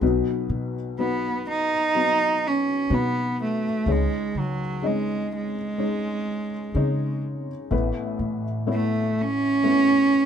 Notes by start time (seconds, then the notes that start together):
0.01 B1 B2 F#3 B3 D#4 B4
0.49 B2
0.99 F#3 B3 D#4 B4
1.49 D#4
1.95 F#3 B3 D#4 B4
2.47 C#4
2.90 B2 F#3 B3 D#4 B4
3.42 A3
3.86 C#2 C#3 G#3 C#4 D#4 C#5
3.92 G#3
4.35 C#3 F#3
4.82 G#3 C#4 D#4 D#5
4.87 G#3
5.36 G#3
5.78 G#3 C#4 D#4 C#5
6.74 C#3 G#3 C#4 D#4 C#5
7.71 A1 A2 A3 B3 E4 B4
8.19 A2
8.66 A3 B3 E4 C#5
8.73 A3
9.21 C#4
9.63 A3 B3 E4 B4